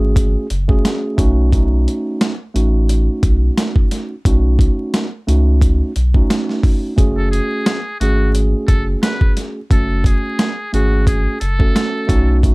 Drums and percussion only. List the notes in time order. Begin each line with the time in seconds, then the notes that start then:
0.16 kick, closed hi-hat
0.50 closed hi-hat
0.69 kick
0.85 snare, closed hi-hat
1.18 kick, closed hi-hat
1.52 kick, closed hi-hat
1.88 closed hi-hat
2.21 snare, closed hi-hat
2.56 closed hi-hat
2.89 closed hi-hat
3.23 kick, closed hi-hat
3.58 snare, closed hi-hat
3.76 kick
3.91 snare, closed hi-hat
4.25 kick, closed hi-hat
4.59 kick, closed hi-hat
4.94 snare, closed hi-hat
5.29 closed hi-hat
5.61 kick, closed hi-hat
5.96 closed hi-hat
6.14 kick
6.30 snare, closed hi-hat
6.49 snare
6.63 kick, open hi-hat
6.98 kick, closed hi-hat
7.33 closed hi-hat
7.66 snare, closed hi-hat
8.01 closed hi-hat
8.35 closed hi-hat
8.68 kick, closed hi-hat
9.03 snare, closed hi-hat
9.21 kick
9.37 snare, closed hi-hat
9.71 kick, closed hi-hat
10.04 kick, closed hi-hat
10.39 snare, closed hi-hat
10.74 closed hi-hat
11.07 kick, closed hi-hat
11.41 closed hi-hat
11.60 kick
11.76 snare, closed hi-hat
12.09 kick, closed hi-hat
12.43 kick, closed hi-hat